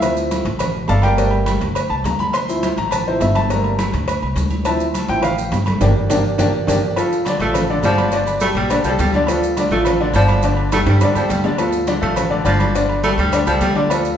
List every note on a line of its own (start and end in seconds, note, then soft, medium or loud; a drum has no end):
0.00 0.40 D2 medium
0.00 0.44 F3 medium
0.00 0.44 C4 medium
0.00 0.45 E4 medium
0.00 0.15 E5 medium
0.00 cowbell loud
0.00 high conga soft
0.00 low agogo loud
0.00 maracas medium
0.17 high conga soft
0.17 maracas medium
0.31 cowbell medium
0.31 high conga medium
0.31 low agogo medium
0.31 maracas medium
0.45 0.86 A1 medium
0.45 cowbell medium
0.45 high conga soft
0.45 maracas soft
0.59 cowbell loud
0.59 high conga soft
0.59 low conga medium
0.59 low agogo loud
0.59 maracas medium
0.75 high conga soft
0.88 1.56 G1 medium
0.88 1.03 A4 medium
0.88 1.02 D5 medium
0.88 1.03 F5 medium
0.88 1.03 A5 loud
0.88 cowbell medium
0.88 high conga medium
0.88 low timbale medium
0.88 low agogo medium
0.88 maracas medium
1.02 1.31 G4 medium
1.02 1.31 A#4 medium
1.02 1.31 D5 medium
1.02 1.30 G5 loud
1.02 cowbell medium
1.02 high conga medium
1.02 low agogo loud
1.02 maracas soft
1.16 1.58 G3 medium
1.16 1.59 A3 medium
1.16 1.59 A#3 medium
1.16 cowbell loud
1.16 high conga soft
1.16 maracas medium
1.31 high conga soft
1.31 low agogo medium
1.46 cowbell medium
1.46 high conga medium
1.46 low agogo loud
1.46 maracas medium
1.61 1.88 D2 medium
1.61 cowbell medium
1.61 maracas soft
1.75 cowbell loud
1.75 high conga soft
1.75 low agogo loud
1.75 maracas medium
1.90 2.04 C2 medium
1.90 2.04 A5 medium
1.90 high conga soft
1.90 low agogo medium
2.04 2.72 D2 medium
2.04 2.19 A#5 medium
2.04 cowbell medium
2.04 high conga medium
2.04 low timbale medium
2.04 maracas medium
2.19 2.34 B5 loud
2.19 high conga medium
2.19 low agogo medium
2.19 maracas soft
2.33 2.74 C6 loud
2.33 cowbell loud
2.33 high conga soft
2.33 low agogo loud
2.33 maracas medium
2.49 2.68 F3 medium
2.49 2.68 C4 medium
2.49 2.68 E4 medium
2.49 high conga soft
2.49 maracas medium
2.63 cowbell medium
2.63 high conga loud
2.63 low agogo medium
2.63 maracas medium
2.77 3.18 A1 medium
2.77 2.92 A#5 loud
2.77 cowbell medium
2.77 high conga soft
2.77 maracas soft
2.91 3.06 A5 medium
2.91 cowbell loud
2.91 high conga soft
2.91 low conga medium
2.91 low agogo loud
2.91 maracas medium
3.07 3.20 F3 soft
3.07 3.20 C4 soft
3.07 3.20 E4 medium
3.07 3.21 C5 medium
3.07 high conga soft
3.20 3.88 G1 loud
3.20 3.35 E5 medium
3.20 cowbell medium
3.20 high conga medium
3.20 low timbale medium
3.20 low agogo medium
3.20 maracas medium
3.35 3.50 A5 loud
3.35 cowbell medium
3.35 high conga medium
3.35 low agogo loud
3.35 maracas soft
3.50 3.69 G3 medium
3.50 3.70 A3 medium
3.50 3.70 A#3 medium
3.50 4.33 A#5 medium
3.50 cowbell loud
3.50 high conga soft
3.50 maracas medium
3.64 high conga soft
3.64 low agogo medium
3.79 cowbell medium
3.79 high conga loud
3.79 low agogo loud
3.79 maracas medium
3.93 4.20 D2 loud
3.93 cowbell medium
3.93 maracas soft
4.08 cowbell loud
4.08 high conga soft
4.08 low agogo loud
4.08 maracas medium
4.22 4.35 C2 medium
4.22 high conga soft
4.22 low agogo loud
4.35 5.03 D2 loud
4.35 cowbell medium
4.35 high conga medium
4.35 maracas medium
4.50 high conga medium
4.50 low agogo medium
4.50 maracas soft
4.65 4.85 F3 medium
4.65 4.85 C4 medium
4.65 4.85 E4 medium
4.65 5.06 A5 medium
4.65 cowbell loud
4.65 high conga soft
4.65 low agogo loud
4.65 maracas medium
4.80 high conga soft
4.80 maracas medium
4.94 cowbell medium
4.94 high conga medium
4.94 low agogo medium
4.94 maracas medium
5.08 5.49 A1 medium
5.08 5.22 F3 medium
5.08 5.22 C4 soft
5.08 5.22 E4 medium
5.08 5.23 G5 loud
5.08 cowbell medium
5.08 high conga soft
5.08 maracas soft
5.22 5.32 F5 loud
5.22 cowbell loud
5.22 high conga soft
5.22 low conga medium
5.22 low agogo loud
5.22 maracas medium
5.38 high conga soft
5.38 maracas medium
5.52 5.79 G1 loud
5.52 cowbell medium
5.52 high conga medium
5.52 low timbale medium
5.52 low agogo medium
5.52 maracas medium
5.66 cowbell medium
5.66 high conga medium
5.66 low agogo loud
5.66 maracas soft
5.81 5.92 G1 loud
5.81 5.90 A#3 loud
5.81 5.90 D4 loud
5.81 5.91 G4 loud
5.81 cowbell medium
5.81 low conga loud
5.81 high timbale loud
5.81 maracas loud
6.10 6.20 G1 loud
6.10 6.20 A#3 loud
6.10 6.19 D4 loud
6.10 6.20 G4 loud
6.10 cowbell loud
6.10 low conga medium
6.10 high timbale loud
6.10 maracas loud
6.38 6.49 G1 medium
6.38 6.49 A#3 loud
6.38 6.48 D4 loud
6.38 6.48 G4 loud
6.38 cowbell loud
6.38 low conga loud
6.38 high timbale loud
6.38 maracas loud
6.67 6.79 G1 loud
6.67 6.77 A#3 loud
6.67 6.77 D4 loud
6.67 6.77 G4 loud
6.67 cowbell loud
6.67 low conga loud
6.67 high timbale loud
6.67 maracas loud
6.96 7.20 F3 medium
6.96 7.21 F4 medium
6.96 7.21 A4 medium
6.96 cowbell loud
6.96 high conga soft
6.96 low agogo loud
6.96 maracas medium
7.12 high conga soft
7.12 maracas medium
7.25 7.38 D3 medium
7.25 7.38 D4 medium
7.25 7.38 D5 medium
7.25 cowbell medium
7.25 high conga medium
7.25 low agogo medium
7.25 maracas medium
7.39 7.80 A1 medium
7.39 7.64 F3 medium
7.39 7.63 A3 medium
7.39 7.64 F4 medium
7.39 7.65 A4 medium
7.39 cowbell medium
7.39 high conga soft
7.39 maracas soft
7.54 cowbell loud
7.54 high conga soft
7.54 low conga medium
7.54 low agogo loud
7.54 maracas medium
7.70 7.81 D3 medium
7.70 7.81 D4 medium
7.70 7.82 D5 medium
7.70 high conga soft
7.83 8.50 G1 medium
7.83 8.08 D3 medium
7.83 8.17 F3 medium
7.83 8.08 D4 medium
7.83 8.08 D5 medium
7.83 cowbell medium
7.83 high conga medium
7.83 low timbale medium
7.83 low agogo medium
7.83 maracas medium
7.98 cowbell medium
7.98 high conga medium
7.98 low agogo loud
7.98 maracas soft
8.12 8.37 D3 medium
8.12 8.36 D4 medium
8.12 8.37 D5 medium
8.12 cowbell loud
8.12 high conga soft
8.12 maracas medium
8.27 high conga soft
8.27 low agogo medium
8.27 maracas medium
8.40 8.65 G3 medium
8.40 8.49 A3 medium
8.40 8.65 G4 medium
8.40 8.66 A4 medium
8.40 cowbell medium
8.40 high conga medium
8.40 low agogo loud
8.40 maracas medium
8.55 8.82 A#1 loud
8.55 8.72 G3 medium
8.55 cowbell medium
8.55 maracas soft
8.70 8.82 D3 medium
8.70 8.82 D4 medium
8.70 8.82 D5 medium
8.70 cowbell loud
8.70 high conga soft
8.70 low agogo loud
8.70 maracas medium
8.84 8.98 C2 medium
8.84 8.92 F3 medium
8.84 9.09 G3 medium
8.84 9.09 G4 medium
8.84 9.09 A4 medium
8.84 high conga soft
8.84 low agogo loud
8.84 maracas medium
8.99 9.65 D2 loud
8.99 9.15 G3 medium
8.99 cowbell medium
8.99 high conga medium
8.99 low timbale medium
8.99 maracas medium
9.13 9.26 D3 medium
9.13 9.26 D4 medium
9.13 9.26 D5 loud
9.13 high conga medium
9.13 low agogo medium
9.13 maracas soft
9.27 9.52 F3 medium
9.27 9.52 F4 medium
9.27 9.52 A4 medium
9.27 cowbell loud
9.27 high conga soft
9.27 low agogo loud
9.27 maracas medium
9.43 high conga soft
9.43 maracas medium
9.57 9.69 D3 medium
9.57 9.69 D4 medium
9.57 9.69 D5 medium
9.57 cowbell medium
9.57 high conga loud
9.57 low agogo medium
9.57 maracas medium
9.71 10.11 A1 loud
9.71 9.95 F3 medium
9.71 9.94 A3 medium
9.71 9.96 F4 medium
9.71 9.96 A4 medium
9.71 cowbell medium
9.71 high conga soft
9.71 maracas soft
9.85 cowbell loud
9.85 high conga soft
9.85 low conga medium
9.85 low agogo loud
9.85 maracas medium
10.00 10.12 D3 loud
10.00 10.12 D4 medium
10.00 10.13 D5 medium
10.00 high conga soft
10.13 10.81 G1 loud
10.13 10.39 D3 medium
10.13 10.47 F3 medium
10.13 10.39 D4 medium
10.13 10.39 D5 medium
10.13 cowbell medium
10.13 high conga medium
10.13 low agogo medium
10.13 maracas medium
10.28 cowbell medium
10.28 high conga medium
10.28 low agogo loud
10.28 maracas soft
10.42 10.67 D3 medium
10.42 10.67 D4 medium
10.42 10.68 D5 medium
10.42 cowbell loud
10.42 high conga soft
10.42 maracas medium
10.57 high conga soft
10.57 low agogo medium
10.72 10.96 G3 medium
10.72 10.80 A3 medium
10.72 10.96 G4 medium
10.72 10.97 A4 medium
10.72 cowbell medium
10.72 high conga medium
10.72 high timbale medium
10.72 low agogo loud
10.72 maracas medium
10.86 11.13 G2 loud
10.86 11.03 G3 medium
10.86 cowbell medium
10.86 high timbale medium
10.86 maracas soft
11.01 11.14 D3 medium
11.01 11.14 D4 medium
11.01 11.14 D5 medium
11.01 cowbell loud
11.01 high conga soft
11.01 high timbale medium
11.01 low agogo loud
11.01 maracas medium
11.15 11.29 E2 medium
11.15 11.24 F3 medium
11.15 11.40 G3 medium
11.15 11.40 G4 medium
11.15 11.40 A4 medium
11.15 high conga soft
11.15 low agogo loud
11.15 maracas medium
11.29 11.97 D2 medium
11.29 11.45 G3 medium
11.29 cowbell medium
11.29 high conga medium
11.29 low timbale medium
11.29 maracas medium
11.44 11.56 D3 medium
11.44 11.57 D4 loud
11.44 11.57 D5 medium
11.44 low timbale medium
11.44 low agogo medium
11.44 maracas soft
11.58 11.83 F3 medium
11.58 11.83 F4 medium
11.58 11.83 A4 medium
11.58 cowbell loud
11.58 high conga soft
11.58 low agogo loud
11.58 maracas medium
11.72 high conga soft
11.72 maracas medium
11.87 12.00 D3 medium
11.87 12.00 D4 medium
11.87 12.00 D5 medium
11.87 cowbell medium
11.87 high conga medium
11.87 low agogo medium
11.87 maracas medium
12.01 12.43 A1 loud
12.01 12.25 F3 medium
12.01 12.25 A3 medium
12.01 12.26 F4 medium
12.01 12.26 A4 medium
12.01 cowbell medium
12.01 high conga soft
12.01 maracas soft
12.16 cowbell loud
12.16 high conga soft
12.16 low conga medium
12.16 low agogo loud
12.16 maracas medium
12.30 12.42 D3 medium
12.30 12.43 D4 medium
12.30 12.43 D5 medium
12.30 high conga soft
12.45 13.12 G1 medium
12.45 12.69 D3 medium
12.45 12.78 F3 medium
12.45 12.69 D4 medium
12.45 12.69 D5 medium
12.45 cowbell medium
12.45 high conga medium
12.45 low agogo medium
12.45 maracas medium
12.60 cowbell medium
12.60 high conga medium
12.60 low agogo loud
12.60 maracas soft
12.75 12.98 D3 medium
12.75 12.99 D4 medium
12.75 12.99 D5 medium
12.75 cowbell loud
12.75 maracas medium
12.89 high conga soft
12.89 low agogo medium
13.04 13.28 G3 medium
13.04 13.11 A3 medium
13.04 13.28 G4 medium
13.04 13.28 A4 medium
13.04 cowbell medium
13.04 high conga medium
13.04 low agogo loud
13.04 maracas medium
13.18 13.45 D2 loud
13.18 13.34 G3 medium
13.18 cowbell medium
13.18 maracas soft
13.33 13.45 D3 medium
13.33 13.45 D4 medium
13.33 13.45 D5 medium
13.33 cowbell loud
13.33 low agogo loud
13.33 maracas medium
13.47 13.60 C2 medium
13.47 13.55 F3 medium
13.47 13.71 G3 medium
13.47 13.71 G4 medium
13.47 13.71 A4 medium
13.47 low agogo medium
13.47 maracas medium
13.60 14.17 D2 loud
13.60 13.77 G3 medium
13.60 cowbell medium
13.60 high conga medium
13.60 low timbale medium
13.60 maracas medium
13.75 13.88 D3 medium
13.75 13.88 D4 loud
13.75 13.88 D5 loud
13.75 low agogo medium
13.75 maracas soft
13.90 14.14 F3 medium
13.90 14.14 F4 medium
13.90 14.14 A4 medium
13.90 cowbell loud
13.90 high conga soft
13.90 low agogo loud
13.90 maracas medium
14.05 high conga soft
14.05 maracas medium